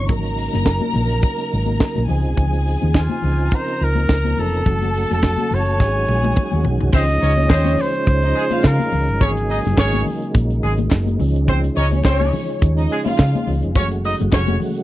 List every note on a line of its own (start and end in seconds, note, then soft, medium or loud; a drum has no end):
0.00 5.76 C#3 medium
0.00 4.61 D#4 medium
0.09 0.47 G#1 medium
0.09 2.07 F#3 medium
0.09 2.07 A#3 medium
0.09 2.05 A#4 medium
0.09 2.05 A#5 loud
0.09 kick loud
0.09 closed hi-hat medium
0.09 muted conga soft
0.09 low conga medium
0.25 closed hi-hat soft
0.38 open hi-hat medium
0.53 0.78 F#1 loud
0.53 snare soft
0.53 closed hi-hat soft
0.53 high conga medium
0.66 kick loud
0.66 snare loud
0.66 closed hi-hat medium
0.81 closed hi-hat soft
0.81 muted conga soft
0.81 high conga medium
0.93 1.19 A#1 medium
0.93 open hi-hat medium
0.93 low conga medium
1.09 closed hi-hat soft
1.22 kick loud
1.22 closed hi-hat medium
1.22 muted conga soft
1.38 closed hi-hat soft
1.38 muted conga soft
1.52 1.77 G#1 medium
1.52 open hi-hat medium
1.66 closed hi-hat medium
1.66 high conga medium
1.79 kick loud
1.79 snare loud
1.79 closed hi-hat medium
1.79 muted conga soft
1.96 2.08 A#1 medium
1.96 closed hi-hat soft
1.96 high conga medium
2.09 2.26 C#2 medium
2.09 4.63 F3 medium
2.09 4.63 C4 medium
2.09 3.49 G#4 medium
2.09 3.49 G#5 medium
2.09 open hi-hat medium
2.09 low conga medium
2.25 2.36 C2 medium
2.25 closed hi-hat soft
2.37 2.75 C#2 medium
2.37 kick medium
2.37 closed hi-hat medium
2.37 low conga medium
2.53 closed hi-hat soft
2.53 muted conga soft
2.67 open hi-hat medium
2.82 3.07 D#2 medium
2.82 closed hi-hat soft
2.82 high conga medium
2.93 kick loud
2.93 snare loud
2.93 closed hi-hat medium
2.93 muted conga soft
2.98 3.56 F4 medium
3.10 closed hi-hat soft
3.10 high conga medium
3.22 3.48 C#2 loud
3.22 open hi-hat medium
3.22 low conga medium
3.39 closed hi-hat soft
3.51 4.63 A#4 medium
3.51 3.85 C5 loud
3.51 4.63 A#5 medium
3.51 kick loud
3.51 closed hi-hat medium
3.67 closed hi-hat soft
3.67 muted conga soft
3.81 4.05 C#2 medium
3.81 4.41 A#4 medium
3.81 open hi-hat medium
3.96 closed hi-hat medium
3.96 high conga medium
4.08 4.33 C#2 medium
4.08 kick loud
4.08 snare loud
4.08 closed hi-hat medium
4.08 muted conga soft
4.24 closed hi-hat soft
4.24 high conga medium
4.38 4.62 F1 medium
4.38 5.11 A4 loud
4.38 open hi-hat medium
4.38 low conga medium
4.54 closed hi-hat soft
4.65 5.04 F#1 medium
4.65 6.91 F#3 medium
4.65 5.79 A3 medium
4.65 6.92 F#4 medium
4.65 5.77 A4 medium
4.65 5.77 A5 medium
4.65 kick loud
4.65 closed hi-hat medium
4.65 muted conga soft
4.65 low conga medium
4.82 closed hi-hat medium
4.82 muted conga soft
4.82 high conga medium
4.95 open hi-hat medium
5.11 5.35 F1 medium
5.11 5.56 A4 loud
5.11 snare soft
5.11 closed hi-hat soft
5.11 high conga medium
5.23 kick medium
5.23 snare loud
5.23 closed hi-hat medium
5.38 closed hi-hat soft
5.38 high conga medium
5.51 5.80 F#1 medium
5.51 6.67 C#5 loud
5.51 open hi-hat medium
5.51 low conga medium
5.67 closed hi-hat soft
5.78 6.04 G#1 medium
5.78 6.92 D#3 medium
5.78 6.91 G#3 medium
5.78 6.91 C#4 medium
5.78 6.91 G#4 medium
5.78 6.91 G#5 medium
5.78 kick loud
5.78 snare medium
6.08 6.32 A#1 medium
6.08 high tom medium
6.23 high tom medium
6.23 high conga medium
6.36 kick loud
6.36 mid tom medium
6.36 muted conga soft
6.52 6.64 D#2 medium
6.52 high conga medium
6.64 6.79 B1 medium
6.64 floor tom medium
6.64 low conga medium
6.81 6.92 C2 medium
6.81 floor tom medium
6.92 7.17 C#2 loud
6.92 13.71 C#3 medium
6.92 9.18 F3 medium
6.92 14.83 G#3 medium
6.92 7.03 C4 medium
6.92 9.18 C#4 medium
6.92 13.71 D#4 medium
6.92 7.03 C5 loud
6.92 7.82 D#5 loud
6.92 kick loud
6.92 crash medium
6.92 low conga medium
7.09 closed hi-hat medium
7.09 muted conga soft
7.21 7.46 C#2 loud
7.21 7.32 C#4 medium
7.21 7.34 D#4 medium
7.21 7.32 C#5 medium
7.21 7.34 D#5 medium
7.21 open hi-hat medium
7.37 7.48 C#4 medium
7.37 7.48 C#5 medium
7.37 closed hi-hat soft
7.37 high conga medium
7.48 7.74 D#2 loud
7.48 7.73 C4 loud
7.48 8.04 C#4 loud
7.48 7.73 C5 loud
7.48 8.04 C#5 loud
7.48 kick loud
7.48 snare loud
7.48 clap loud
7.48 closed hi-hat medium
7.48 muted conga soft
7.64 closed hi-hat soft
7.64 high conga medium
7.77 8.68 C5 loud
7.77 open hi-hat medium
7.77 low conga medium
7.94 closed hi-hat soft
8.06 8.32 C#2 loud
8.06 kick loud
8.06 closed hi-hat medium
8.22 8.33 D#4 medium
8.22 8.34 D#5 medium
8.22 closed hi-hat soft
8.22 muted conga soft
8.35 8.45 G#3 medium
8.35 8.45 G#4 medium
8.35 open hi-hat medium
8.51 8.90 F4 medium
8.51 8.90 F5 medium
8.51 closed hi-hat medium
8.51 high conga medium
8.63 8.78 C#3 loud
8.63 9.26 A#4 loud
8.63 kick loud
8.63 snare loud
8.63 clap medium
8.63 closed hi-hat medium
8.63 muted conga soft
8.80 closed hi-hat medium
8.80 muted conga soft
8.80 high conga medium
8.92 9.07 C#2 medium
8.92 open hi-hat medium
8.92 low conga medium
9.09 9.21 G1 medium
9.09 closed hi-hat soft
9.21 9.59 G#1 loud
9.21 11.18 F#3 medium
9.21 11.18 A#3 medium
9.21 9.31 C#4 medium
9.21 10.37 G#4 loud
9.21 9.30 C#5 loud
9.21 kick loud
9.21 closed hi-hat medium
9.21 low conga medium
9.37 closed hi-hat medium
9.37 muted conga soft
9.49 9.59 D#4 medium
9.49 9.59 D#5 medium
9.49 open hi-hat medium
9.65 9.77 F#1 loud
9.65 snare soft
9.65 closed hi-hat soft
9.65 high conga medium
9.77 10.02 G#1 medium
9.77 10.01 C#4 medium
9.77 10.01 C#5 loud
9.77 kick loud
9.77 snare loud
9.77 clap medium
9.77 closed hi-hat medium
9.77 muted conga soft
9.93 closed hi-hat soft
9.93 muted conga soft
9.93 high conga medium
10.06 open hi-hat medium
10.06 low conga medium
10.22 closed hi-hat soft
10.34 10.59 A#1 loud
10.34 kick loud
10.34 closed hi-hat medium
10.34 muted conga soft
10.50 closed hi-hat soft
10.63 10.87 G#1 loud
10.63 10.73 G#3 medium
10.63 10.73 G#4 medium
10.63 open hi-hat medium
10.78 closed hi-hat medium
10.78 high conga medium
10.91 11.16 F#1 medium
10.91 kick loud
10.91 snare loud
10.91 clap medium
10.91 closed hi-hat medium
11.07 closed hi-hat soft
11.07 muted conga soft
11.07 high conga medium
11.19 11.68 C#2 loud
11.19 13.74 F3 medium
11.19 13.74 C#4 medium
11.19 open hi-hat medium
11.19 low conga medium
11.36 closed hi-hat soft
11.48 11.58 C4 medium
11.48 11.58 C5 loud
11.48 kick loud
11.48 closed hi-hat medium
11.48 muted conga soft
11.48 low conga medium
11.64 closed hi-hat medium
11.64 muted conga soft
11.76 12.01 C#2 loud
11.76 11.86 C#4 medium
11.76 11.89 D#4 medium
11.76 11.86 C#5 medium
11.76 11.89 D#5 medium
11.76 open hi-hat medium
11.92 12.03 C#4 medium
11.92 12.03 C#5 medium
11.92 closed hi-hat soft
11.92 high conga medium
12.04 12.29 C#2 loud
12.04 12.28 C4 loud
12.04 12.59 C#4 loud
12.04 12.28 C5 loud
12.04 12.59 C#5 loud
12.04 kick loud
12.04 snare loud
12.04 clap loud
12.04 closed hi-hat medium
12.20 closed hi-hat soft
12.20 muted conga soft
12.20 high conga medium
12.33 open hi-hat medium
12.33 low conga medium
12.49 closed hi-hat soft
12.62 12.86 D#2 medium
12.62 kick loud
12.62 closed hi-hat medium
12.77 12.88 D#4 medium
12.77 12.87 D#5 medium
12.77 closed hi-hat soft
12.77 muted conga soft
12.90 13.00 G#3 medium
12.90 13.00 G#4 loud
12.90 open hi-hat medium
13.05 13.45 F4 medium
13.05 13.44 F5 medium
13.05 closed hi-hat medium
13.05 high conga medium
13.18 13.33 C#3 loud
13.18 kick loud
13.18 snare loud
13.18 clap medium
13.18 closed hi-hat medium
13.35 closed hi-hat medium
13.35 muted conga soft
13.35 high conga medium
13.47 13.62 C#2 medium
13.47 open hi-hat medium
13.47 low conga medium
13.63 13.76 F1 medium
13.63 closed hi-hat medium
13.75 14.13 F#1 loud
13.75 14.83 C#3 medium
13.75 14.83 F#3 medium
13.75 14.83 A3 medium
13.75 13.86 C#4 medium
13.75 14.83 F#4 medium
13.75 13.86 C#5 loud
13.75 kick loud
13.75 closed hi-hat medium
13.75 low conga medium
13.92 closed hi-hat medium
13.92 muted conga soft
14.04 14.14 D#4 medium
14.04 14.14 D#5 medium
14.04 open hi-hat medium
14.20 14.31 F#1 loud
14.20 closed hi-hat soft
14.20 high conga medium
14.31 14.57 F1 loud
14.31 14.56 C#4 loud
14.31 14.56 C#5 loud
14.31 kick loud
14.31 snare loud
14.31 clap loud
14.31 closed hi-hat medium
14.31 muted conga soft
14.48 closed hi-hat soft
14.48 muted conga soft
14.48 high conga medium
14.60 open hi-hat medium
14.60 low conga medium
14.76 closed hi-hat soft